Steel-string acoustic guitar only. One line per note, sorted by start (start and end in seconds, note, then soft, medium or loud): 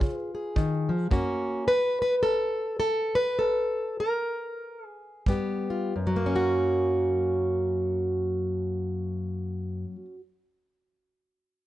0.00 0.52 C#3 medium
0.00 1.09 F4 soft
0.00 0.33 G#4 soft
0.00 0.18 C#5 medium
0.18 0.92 B4 medium
0.35 1.09 G#4 soft
0.56 0.90 D#3 medium
0.89 1.11 F3 medium
1.11 1.58 F#2 medium
1.11 1.71 A#3 medium
1.11 1.71 C#4 medium
1.11 1.67 F#4 medium
1.68 2.01 B4 loud
2.02 2.15 B4 loud
2.23 2.78 A4 loud
2.80 3.15 A4 loud
3.15 3.38 B4 medium
3.39 3.99 A4 medium
4.00 4.86 A#4 medium
4.86 5.27 G#4 medium
5.27 5.90 G2 medium
5.27 5.92 G3 soft
5.27 5.93 B3 soft
5.27 5.93 G4 soft
5.70 5.93 F4 soft
5.96 9.84 F#2 medium
6.07 9.95 F#3 medium
6.16 10.05 A#3 medium
6.26 10.15 C#4 medium
6.36 10.20 F#4 medium